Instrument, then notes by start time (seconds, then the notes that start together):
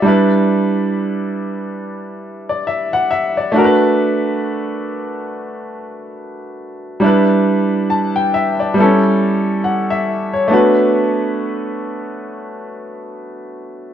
grand piano
Already playing: D5
0.02 G3 D4 E4
0.08 B4
2.49 D5
2.67 E5
2.93 F#5
3.11 E5
3.37 D5
3.52 A3 D4
3.56 F#4 A#4
3.64 B4
7.00 G3 D4 E4
7.06 B4
7.90 A5
8.16 G5
8.34 E5
8.60 D5
8.74 G3 B3 E4
8.80 C#4 A4
9.64 F#5
9.90 E5
10.33 C#5
10.48 A3 B3 D4
10.52 F#4 B4